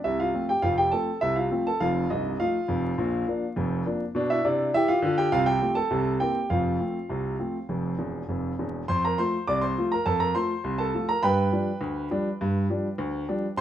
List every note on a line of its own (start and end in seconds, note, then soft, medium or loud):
0.04 0.30 C2 medium
0.04 0.30 C3 medium
0.04 0.19 E4 medium
0.04 0.19 E5 medium
0.20 0.48 F4 medium
0.20 0.43 F5 medium
0.34 0.51 F3 soft
0.34 0.51 A3 soft
0.34 0.51 C4 soft
0.49 0.63 G4 medium
0.49 0.64 G5 medium
0.62 0.88 F1 medium
0.62 0.88 F2 medium
0.62 0.77 F4 medium
0.62 0.78 F5 medium
0.78 0.92 G4 medium
0.78 0.93 G5 medium
0.92 1.08 F3 soft
0.92 1.09 A3 soft
0.92 1.09 C4 soft
0.92 1.20 A4 medium
0.92 1.16 A5 medium
1.21 1.47 C2 medium
1.21 1.47 C3 medium
1.21 1.36 E4 medium
1.21 1.36 E5 medium
1.36 1.64 F4 medium
1.36 1.64 F5 medium
1.51 1.67 F3 soft
1.51 1.67 A3 soft
1.51 1.68 C4 soft
1.67 1.81 A4 medium
1.67 1.81 A5 medium
1.81 2.04 F1 medium
1.81 2.04 F2 medium
1.81 2.08 F4 medium
1.81 2.09 F5 medium
2.10 2.34 C1 medium
2.10 2.34 C2 medium
2.10 2.38 D#4 medium
2.10 2.38 D#5 medium
2.40 2.56 F3 soft
2.40 2.56 A3 soft
2.40 2.56 D#4 soft
2.40 3.82 F4 medium
2.40 3.57 F5 medium
2.68 2.92 F1 medium
2.68 2.92 F2 medium
2.98 3.23 A#1 medium
2.98 3.23 A#2 medium
3.27 3.43 F3 soft
3.27 3.44 A#3 medium
3.27 3.44 D4 medium
3.56 3.81 F1 medium
3.56 3.81 F2 medium
3.86 4.02 F3 soft
3.86 4.02 A#3 medium
3.86 4.02 D4 medium
4.15 4.38 B2 medium
4.15 4.39 D4 medium
4.30 4.44 E4 medium
4.30 4.45 E5 medium
4.45 4.68 C3 medium
4.45 4.72 D4 medium
4.45 4.69 E4 medium
4.45 4.72 D5 medium
4.74 4.97 E3 medium
4.74 4.88 E4 medium
4.74 4.99 G4 medium
4.74 4.89 E5 loud
4.88 5.03 F4 medium
4.88 5.16 F5 medium
5.02 5.26 D3 medium
5.02 5.27 F4 medium
5.18 5.32 G4 medium
5.18 5.32 G5 loud
5.32 5.57 C2 medium
5.32 5.57 C3 medium
5.32 5.46 F4 medium
5.32 5.47 F5 loud
5.46 5.74 G4 medium
5.46 5.75 G5 loud
5.61 5.78 F3 soft
5.61 5.78 A3 medium
5.61 5.78 C4 medium
5.75 6.18 A4 medium
5.75 6.11 A5 loud
5.91 6.16 C2 medium
5.91 6.16 C3 medium
6.20 6.37 E3 soft
6.20 6.37 A#3 soft
6.20 6.38 C4 medium
6.20 6.49 G4 medium
6.20 6.49 G5 medium
6.50 6.75 F1 medium
6.50 6.76 F2 medium
6.50 8.26 F4 medium
6.50 8.25 F5 medium
6.80 6.96 F3 soft
6.80 6.97 A3 soft
6.80 6.97 C4 soft
7.09 7.35 C2 medium
7.09 7.35 C3 medium
7.39 7.56 F3 soft
7.39 7.56 A3 soft
7.39 7.56 C4 soft
7.69 7.93 F1 medium
7.69 7.93 F2 medium
7.99 8.21 E1 medium
7.99 8.21 E2 medium
8.28 8.51 F1 medium
8.28 8.51 F2 medium
8.59 8.81 E1 medium
8.59 8.81 E2 medium
8.88 9.14 F2 medium
8.88 9.03 C5 medium
8.88 9.03 C6 loud
9.05 9.18 A#4 medium
9.05 9.19 A#5 medium
9.18 9.34 F3 soft
9.18 9.35 A3 soft
9.18 9.35 F4 soft
9.18 9.46 C5 medium
9.18 9.42 C6 medium
9.47 9.73 C2 medium
9.47 9.62 D5 medium
9.47 9.62 D6 loud
9.61 9.90 C5 medium
9.61 9.85 C6 medium
9.78 9.94 F3 medium
9.78 9.94 A3 soft
9.78 9.94 F4 medium
9.92 10.06 A#4 medium
9.92 10.06 A#5 medium
10.06 10.31 F2 medium
10.06 10.20 A4 medium
10.06 10.21 A5 loud
10.20 10.35 A#4 medium
10.20 10.35 A#5 medium
10.35 10.51 F3 soft
10.35 10.52 A3 soft
10.35 10.52 F4 medium
10.35 10.77 C5 medium
10.35 10.77 C6 medium
10.64 10.89 C2 medium
10.78 11.07 A4 medium
10.78 11.07 A5 medium
10.94 11.10 F3 medium
10.94 11.11 A3 soft
10.94 11.11 F4 medium
11.09 11.23 A#4 medium
11.09 11.24 A#5 loud
11.23 11.48 G2 medium
11.23 13.54 B4 medium
11.23 13.54 G5 medium
11.23 13.53 B5 loud
11.52 11.69 F3 soft
11.52 11.69 G3 medium
11.52 11.69 D4 medium
11.81 12.06 D2 medium
12.10 12.27 F3 soft
12.10 12.27 G3 medium
12.10 12.28 D4 medium
12.41 12.66 G2 medium
12.70 12.86 F3 soft
12.70 12.86 G3 soft
12.70 12.86 D4 medium
12.98 13.24 D2 medium
13.28 13.44 F3 medium
13.28 13.45 G3 medium
13.28 13.45 D4 medium
13.57 13.61 C3 medium
13.57 13.61 C6 loud